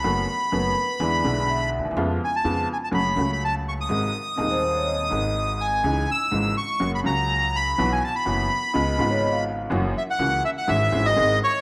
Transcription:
<<
  \new Staff \with { instrumentName = "Bandoneon" } { \time 4/4 \key cis \minor \tempo 4 = 124 b''2.~ b''8 r8 | r8 gis''16 a''8. gis''16 a''16 b''8. b''16 a''8 cis'''16 dis'''16~ | dis'''2.~ dis'''8 gis''8~ | gis''8 e'''4 cis'''8. b''16 ais''4 b''8~ |
b''16 gis''16 a''16 b''2~ b''8. r8 | r8 e''16 fis''8. e''16 fis''16 e''8. dis''8. cis''8 | }
  \new Staff \with { instrumentName = "Vibraphone" } { \time 4/4 \key cis \minor r4 b'4 d''4 e''4~ | e''16 r2. r8. | r4 dis''16 bis'8 cis''16 dis''4~ dis''16 r8. | r1 |
r2 dis''8. cis''16 dis''16 eis''8.~ | eis''16 r2. r8. | }
  \new Staff \with { instrumentName = "Upright piano" } { \clef bass \time 4/4 \key cis \minor << { <fis, dis fis a b fis'>8 r8 <fis, dis fis a b fis'>8 r8 <e, d e gis b e'>8 <b,, b, d gis b e'>4. | <eis, cis eis gis b eis'>8 r8 <eis, cis eis gis b eis'>8 r8 <fis, cis fis a fis'>8 <cis, cis fis a fis'>4. | <gis,, gis, bis, dis gis dis'>8 r8 <dis,, dis, bis, dis gis dis'>4. <gis,, gis, bis, dis gis dis'>4. | <cis, cis e gis dis'>8 r8 <gis,, gis, cis e gis dis'>8 r8 <fis, cis fis ais fis'>8 <cis, cis fis ais fis'>4. |
<b,, b, e fis b fis'>8 r8 <fis,, fis, e fis b fis'>8 r8 <cis, cis gis b eis'>8 <gis,, gis, cis gis b eis'>4. | <fis, e fis ais cis' fis'>8 r8 <cis, cis e ais cis' fis'>8 r8 <gis,, gis, e gis cis' gis'>8 <gis,, gis, e gis cis' gis'>8 <gis,, gis, dis gis bis gis'>8 r8 | } \\ { r2. r8 r32 d,32 dis,32 e,32 | r1 | r1 | r1 |
r1 | r1 | } >> }
  \new Staff \with { instrumentName = "Upright bass" } { \clef bass \time 4/4 \key cis \minor fis,,16. r8 r32 fis,,16. r8 r32 e,16. r32 b,,4~ b,,32 d,32 dis,32 e,32 | eis,16. r8 r32 eis,16. r8 r32 fis,,16. r32 cis,4~ cis,16. r32 | gis,,16. r8 r32 dis,4~ dis,16. r32 gis,,4~ gis,,16. r32 | cis,16. r8 r32 gis,,16. r8 r32 fis,,16. r32 cis,4~ cis,16. r32 |
b,,16. r8 r32 fis,,16. r8 r32 cis,16. r32 gis,,4~ gis,,16. r32 | fis,,16. r8 r32 cis,16. r8 r32 gis,,16. r32 gis,,16. r32 gis,,16. r8 r32 | }
>>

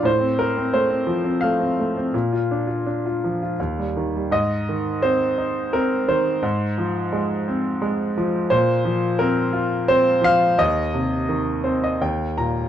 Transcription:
<<
  \new Staff \with { instrumentName = "Upright piano" } { \time 3/4 \key ees \major \tempo 4 = 86 << { r2. | r2. | \key aes \major r2. | r2. |
r2. | r4. c''16 ees''16 g''8 bes''8 | } \\ { c''8 bes'8 c''4 f''4~ | f''2 r4 | ees''4 c''4 bes'8 c''8~ | c''2~ c''8 r8 |
c''4 bes'4 c''8 f''8 | ees''2 r4 | } >> }
  \new Staff \with { instrumentName = "Upright piano" } { \clef bass \time 3/4 \key ees \major a,16 c'8 c'16 a16 c'16 f16 c'16 a16 c'16 a16 c'16 | bes,16 f'16 d'16 f'16 d'16 f'16 f16 f'16 ees,16 g16 ees16 g16 | \key aes \major aes,8 ees8 c'8 ees'8 c'8 ees8 | aes,8 f8 aes8 c'8 aes8 f8 |
bes,8 f8 c'8 f'8 c'8 f8 | ees,8 c8 ees8 c'8 ees,8 bes,8 | }
>>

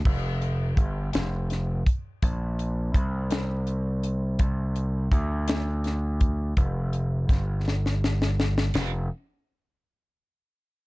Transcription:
<<
  \new Staff \with { instrumentName = "Slap bass" } { \clef bass \time 6/8 \key c \mixolydian \tempo 4. = 55 f,,4 g,,8 f,,4 r8 | bes,,4 c,2 | c,4 d,2 | f,,4 g,,2 |
f,,8 r2 r8 | }
  \new DrumStaff \with { instrumentName = "Drums" } \drummode { \time 6/8 <cymc bd>8 hh8 <hh bd>8 <hh sn>8 <hh sn>8 <hh bd>8 | <hh bd>8 hh8 <hh bd>8 <hh sn>8 hh8 hh8 | <hh bd>8 hh8 <hh bd>8 <hh sn>8 <hh sn>8 <hh bd>8 | <hh bd>8 hh8 <hh bd sn>8 sn16 sn16 sn16 sn16 sn16 sn16 |
<cymc sn>4. r4. | }
>>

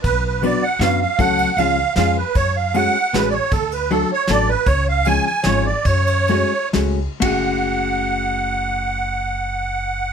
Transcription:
<<
  \new Staff \with { instrumentName = "Accordion" } { \time 3/4 \key fis \minor \tempo 4 = 153 b'8 b'8 d''8 fis''8 eis''8 eis''8 | fis''4 eis''4 eis''8 b'8 | cis''8 eis''8 fis''4 b'16. d''32 cis''8 | a'8 b'8 a'8 cis''8 d''8 b'8 |
cis''8 eis''8 gis''8 gis''8 cis''8 d''8 | cis''2 r4 | fis''2.~ | fis''2. | }
  \new Staff \with { instrumentName = "Hollow-body jazz guitar" } { \time 3/4 \key fis \minor r4 <fis b d' fis' b'>8 r8 <fis b d' fis' b'>8 r8 | <fis a cis' fis' a'>4 <eis gis cis' eis' gis'>8 r8 <eis gis cis' eis' gis'>8 r8 | r4 <gis a cis' fis' gis'>8 r8 <gis a cis' fis' gis'>8 r8 | r4 <fis a d' fis' a'>8 r8 <fis a d' fis' a'>8 r8 |
r4 <eis gis cis' eis' gis'>8 r8 <eis gis cis' eis' gis'>8 r8 | r4 <gis a cis' fis' gis'>8 r8 <gis a cis' fis' gis'>8 r8 | <a cis' fis' gis'>2.~ | <a cis' fis' gis'>2. | }
  \new Staff \with { instrumentName = "Upright bass" } { \clef bass \time 3/4 \key fis \minor b,,2 fis,4 | cis,4 cis,4 eis,4 | fis,2 a,,4 | d,2 a,,4 |
cis,2 gis,,4 | fis,2 cis,4 | fis,,2.~ | fis,,2. | }
  \new DrumStaff \with { instrumentName = "Drums" } \drummode { \time 3/4 <bd cymr>4 cymr4 <cymr sn>4 | <bd cymr>8 cymr8 cymr4 <cymr sn>4 | <bd cymr>4 cymr4 <cymr sn>4 | <bd cymr>8 cymr8 cymr4 <cymr sn>4 |
<bd cymr>4 cymr4 <cymr sn>4 | <bd cymr>8 cymr8 cymr4 <cymr sn>4 | <bd rb>4 r4 r4 | r4 r4 r4 | }
>>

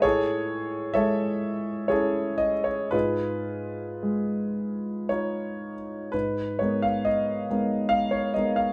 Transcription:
<<
  \new Staff \with { instrumentName = "Grand piano" } { \time 3/4 \key gis \dorian \tempo 4 = 62 <gis' a' cis''>4 <a' cis'' e''>4 <gis' a' cis''>8 dis''16 cis''16 | <eis' gis' b'>2 cis''4 | b'8 cis''16 eis''16 dis''4 eis''16 cis''16 dis''16 eis''16 | }
  \new Staff \with { instrumentName = "Grand piano" } { \time 3/4 \key gis \dorian a,4 gis4 <cis' e'>4 | gis,4 gis4 <dis' eis'>4 | gis,8 <gis b dis' ais'>4 <gis b dis' ais'>4 <gis b dis' ais'>8 | }
>>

